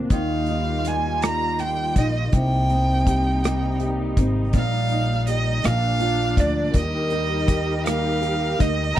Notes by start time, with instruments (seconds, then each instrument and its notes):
Already playing: nylon-string guitar A#2 A#3 C4 F4, string section A#3
0.10 upright bass D#2, string section D#3 G3 F4, nylon-string guitar D#3, violin F5, kick, closed hi-hat
0.46 nylon-string guitar D#4, closed hi-hat
0.85 nylon-string guitar F4, violin G#5, closed hi-hat
1.22 nylon-string guitar A#3, violin A#5, cross-stick, closed hi-hat
1.59 nylon-string guitar F4, violin G5, closed hi-hat
1.96 upright bass A#1, nylon-string guitar D#4, violin D#5, kick, closed hi-hat
2.32 upright bass C2, string section C3 G3 A#3 D#4, nylon-string guitar C3, violin G5, kick, closed hi-hat
2.70 nylon-string guitar C4, closed hi-hat
3.07 nylon-string guitar G4, kick, closed hi-hat
3.44 nylon-string guitar A#3, cross-stick, closed hi-hat
3.80 nylon-string guitar G4, closed hi-hat
4.17 upright bass G#1, nylon-string guitar C4, kick, closed hi-hat
4.53 upright bass A#1, nylon-string guitar A#2, string section A#3, violin F5, kick, closed hi-hat
4.89 nylon-string guitar D#4, closed hi-hat
5.27 nylon-string guitar G4, violin D#5, closed hi-hat
5.63 upright bass A#1, nylon-string guitar A#2, string section F3 A#3 D4, violin F5, cross-stick, closed hi-hat
6.00 nylon-string guitar F4, closed hi-hat
6.37 upright bass D2, nylon-string guitar D4, violin D5, kick, closed hi-hat
6.74 upright bass D#2, string section G3 D#4 G4 A#4, violin D#5, kick, closed hi-hat
7.10 nylon-string guitar D#4, closed hi-hat
7.48 nylon-string guitar G4, kick, closed hi-hat
7.86 nylon-string guitar A#3, violin F5, cross-stick, closed hi-hat
8.22 nylon-string guitar G4, cross-stick, closed hi-hat
8.59 upright bass D2, nylon-string guitar D#4, violin D#5, kick, closed hi-hat
8.96 nylon-string guitar D#3, violin G5, violin section A#5